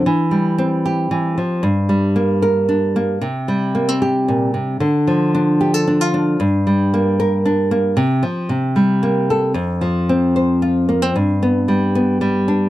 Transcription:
\new Staff \with { instrumentName = "Nylon-string guitar" } { \time 3/4 \key g \dorian \tempo 4 = 114 << { r4 c'8 g'4.~ | g'4 bes8 bes'8 d'8 bes8 | r4 bes16 c'16 g'4. | r4 d'8 g'16 a'16 d'16 f'16 d'8 |
r4 bes8 bes'8 d'8 bes8 | r2 bes8 a'8 | r4 c'8 c''8 f'8 bes16 c'16 | r8 b4 b4 d'8 | } \\ { e8 g4. e8 f8 | g,8 g2~ g8 | c8 g4. bes,8 c8 | d8 f2~ f8 |
g,8 g2~ g8 | c8 f8 c8 g4. | f,8 f2~ f8 | g,4 g4 g4 | } >> }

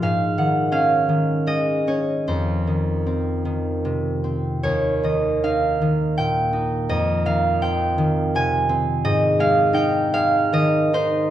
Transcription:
<<
  \new Staff \with { instrumentName = "Harp" } { \time 3/4 \key f \minor \tempo 4 = 80 <ees'' f''>8 ges''8 f''4 ees''8 des''8 | c''2. | des''8 ees''8 f''4 g''4 | ees''8 f''8 g''4 aes''4 |
ees''8 f''8 g''8 f''8 ees''8 c''8 | }
  \new Staff \with { instrumentName = "Harp" } { \clef bass \time 3/4 \key f \minor <aes, aes>8 ees8 des'8 ees8 aes8 des'8 | f,8 ees8 c'8 ees8 c8 c'8 | ees,8 ees8 ees'8 ees8 bes,8 ees'8 | f,8 ees8 c'8 ees8 c8 c'8 |
aes,8 aes8 ees'8 aes8 ees8 ees'8 | }
>>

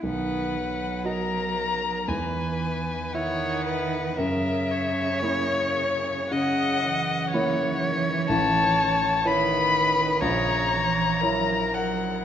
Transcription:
<<
  \new Staff \with { instrumentName = "Violin" } { \time 4/4 \key fis \mixolydian \tempo 4 = 59 fis''4 ais''4 gis''4 fis''4 | e''4 cis''4 fis''4. r8 | \key fis \dorian a''4 b''4 ais''4. fis''8 | }
  \new Staff \with { instrumentName = "Violin" } { \time 4/4 \key fis \mixolydian b'4 ais'4 b'4 cis''8 b'8 | ais'8 cis''4. dis''4 cis''4 | \key fis \dorian cis''4 b'4 cis''4 ais'4 | }
  \new Staff \with { instrumentName = "Grand piano" } { \time 4/4 \key fis \mixolydian b,,4 <fis' dis''>4 e,4 <e' e''>4 | fis,4 <ais e' cis''>4 cis4 <ais e' cis''>4 | \key fis \dorian a,,4 <e' cis''>4 ais,,4 <e' cis''>4 | }
  \new Staff \with { instrumentName = "Cello" } { \clef bass \time 4/4 \key fis \mixolydian dis8 fis4. e4 dis4 | cis2 cis8 e4.~ | \key fis \dorian e4 dis4 cis8 e8 fis8 fis8 | }
>>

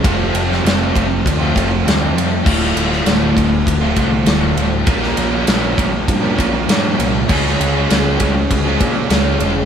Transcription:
<<
  \new Staff \with { instrumentName = "Overdriven electric guitar" } { \time 4/4 \key d \minor \tempo 4 = 99 <f, c f a c' f'>8 <f a c' f'>16 <f a c' f'>16 <f, c f a c' f'>4~ <f, c f a c' f'>16 <f a c' f'>16 <f a c' f'>8 <f, c f a c' f'>8 <f a c' f'>16 <f a c' f'>16 | <d, a, d a f'>8 <a, d a f'>16 <d a f'>16 <d, a, d a f'>4~ <d, a, d a f'>16 <d a f'>16 <a, d a f'>8 <d, a, d a f'>8 <a, d a f'>16 <d a f'>16 | <bes, f bes des' f' bes'>8 <bes des' f' bes'>16 <bes des' f' bes'>16 <bes, f bes des' f' bes'>4~ <bes, f bes des' f' bes'>16 <bes des' f' bes'>16 <bes des' f' bes'>8 <bes, f bes des' f' bes'>8 <bes des' f' bes'>16 <bes des' f' bes'>16 | <cis gis cis' eis' gis'>8 <gis cis' eis' gis'>16 <cis' eis' gis'>16 <cis gis cis' eis' gis'>4~ <cis gis cis' eis' gis'>16 <cis' eis' gis'>16 <gis cis' eis' gis'>8 <cis gis cis' eis' gis'>8 <gis cis' eis' gis'>16 <cis' eis' gis'>16 | }
  \new Staff \with { instrumentName = "Overdriven electric guitar" } { \time 4/4 \key d \minor <f, c f a c' f'>8. <f a c' f'>16 <f, c f a c' f'>8 <f a c' f'>8. <f a c' f'>16 <f a c' f'>16 <f a c' f'>16 <f, c f a c' f'>8 <f a c' f'>8 | <d, a, d a f'>8. <d a f'>16 <d, a, d a f'>8 <a, d a f'>8. <d a f'>16 <a, d a f'>16 <d a f'>16 <d, a, d a f'>8 <a, d a f'>8 | <bes, f bes des' f' bes'>8. <bes des' f' bes'>16 <bes, f bes des' f' bes'>8 <bes des' f' bes'>8. <bes des' f' bes'>16 <bes des' f' bes'>16 <bes des' f' bes'>16 <bes, f bes des' f' bes'>8 <bes des' f' bes'>8 | <cis gis cis' eis' gis'>8. <cis' eis' gis'>16 <cis gis cis' eis' gis'>8 <gis cis' eis' gis'>8. <cis' eis' gis'>16 <gis cis' eis' gis'>16 <cis' eis' gis'>16 <cis gis cis' eis' gis'>8 <gis cis' eis' gis'>8 | }
  \new Staff \with { instrumentName = "Overdriven electric guitar" } { \time 4/4 \key d \minor <f, c f a c' f'>1 | <d, a, d a f'>1 | <bes, f bes des' f' bes'>1 | <cis gis cis' eis' gis'>1 | }
  \new Staff \with { instrumentName = "Picked electric bass" } { \clef bass \time 4/4 \key d \minor f,,8 f,,8 f,,8 f,,8 d,8 f,,8 d,8 f,8 | d,,8 d,,8 d,,8 d,,8 d,,8 c,8 d,,8 d,,8 | bes,,8 bes,,8 bes,,8 bes,,8 g,8 bes,,8 g,8 c,8 | cis,8 cis,8 cis,8 cis,8 cis,8 bes,8 cis,8 e,,8 | }
  \new DrumStaff \with { instrumentName = "Drums" } \drummode { \time 4/4 <bd cymr>8 cymr16 sn16 <cymr sn>8 <bd cymr>8 <bd cymr>8 <bd cymr>8 <cymr sn>8 cymr8 | <cymc bd>16 sn16 cymr16 sn16 <cymr sn>8 <bd cymr>8 <bd cymr>8 <bd cymr>8 <cymr sn>8 cymr8 | <bd cymr>16 sn16 cymr8 <cymr sn>8 <bd cymr>8 <bd cymr>8 <bd cymr>8 <cymr sn>8 cymr8 | <cymc bd>16 sn16 cymr8 <cymr sn>8 <bd cymr>8 <bd cymr>8 <bd cymr>8 <cymr sn>8 cymr8 | }
>>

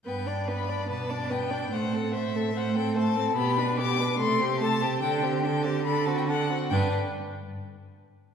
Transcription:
<<
  \new Staff \with { instrumentName = "Violin" } { \time 4/4 \key g \major \tempo 4 = 144 g''4 b''4 a''4 g''4 | fis''4 e''4 fis''8 g''8 a''4 | b''4 d'''4 c'''4 a''4 | g''4 g''8 a''8 b''8 a''16 g''16 fis''4 |
g''8 r2. r8 | }
  \new Staff \with { instrumentName = "Violin" } { \time 4/4 \key g \major b'8 d''8 b'8 d''8 b'8 d''8 b'8 d''8 | c''8 a'8 c''8 a'8 c''8 a'8 c''8 a'8 | g'8 b'8 g'8 b'8 a'8 g'8 a'8 g'8 | a'8 g'8 a'8 g'8 a'8 fis'8 a'8 fis'8 |
b'8 r2. r8 | }
  \new Staff \with { instrumentName = "Viola" } { \time 4/4 \key g \major b8 d'8 b8 d'8 b8 d'8 b8 d'8 | a8 c'8 a8 c'8 a8 c'8 a8 c'8 | b8 d'8 b8 d'8 a8 c'8 a8 c'8 | d'8 c'8 d'8 c'8 d'8 c'8 d'8 c'8 |
d'8 r2. r8 | }
  \new Staff \with { instrumentName = "Cello" } { \clef bass \time 4/4 \key g \major g,2 b,2 | a,1 | b,2 c2 | d2.~ d8 r8 |
g,8 r2. r8 | }
>>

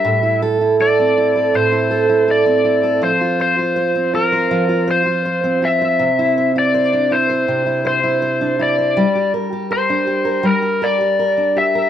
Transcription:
<<
  \new Staff \with { instrumentName = "Electric slide guitar" } { \time 4/4 \key c \mixolydian \tempo 4 = 81 e''8 r8 d''4 c''4 d''4 | c''8 c''4 bes'4 c''4 e''8~ | e''8. d''8. c''4 c''4 d''8~ | d''8 r8 c''4 bes'8 d''4 e''8 | }
  \new Staff \with { instrumentName = "Steel-string acoustic guitar" } { \time 4/4 \key c \mixolydian a,16 e'16 a'16 e'16 a'16 c'16 e'16 a'16 a,16 e'16 a'16 e'16 a'16 c'16 e'16 a'16 | f16 f'16 c''16 f'16 c''16 c'16 f'16 c''16 f16 f'16 c''16 f'16 c''16 c'16 f'16 c''16 | c16 e'16 c''16 e'16 c''16 d'16 e'16 c''16 c16 e'16 c''16 e'16 c''16 d'16 e'16 c''16 | g16 g'16 bes'16 g'16 bes'16 d'16 g'16 bes'16 g16 g'16 bes'16 g'16 bes'16 d'16 g'16 bes'16 | }
>>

